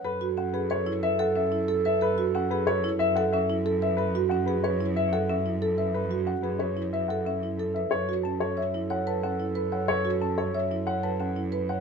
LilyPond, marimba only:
\new Staff \with { instrumentName = "Marimba" } { \time 6/4 \key fis \minor \tempo 4 = 183 a'8 fis'8 cis'8 gis'8 b'8 e'8 b'8 a'8 cis'8 e'8 a'8 b'8 | a'8 fis'8 cis'8 gis'8 b'8 e'8 b'8 a'8 cis'8 e'8 a'8 b'8 | a'8 fis'8 cis'8 gis'8 b'8 e'8 b'8 a'8 cis'8 e'8 a'8 b'8 | a'8 fis'8 cis'8 gis'8 b'8 e'8 b'8 a'8 cis'8 e'8 a'8 b'8 |
b'8 fis'8 cis'8 a'8 cis''8 e'8 cis''8 b'8 cis'8 e'8 b'8 cis''8 | b'8 fis'8 cis'8 a'8 cis''8 e'8 cis''8 b'8 cis'8 e'8 b'8 cis''8 | }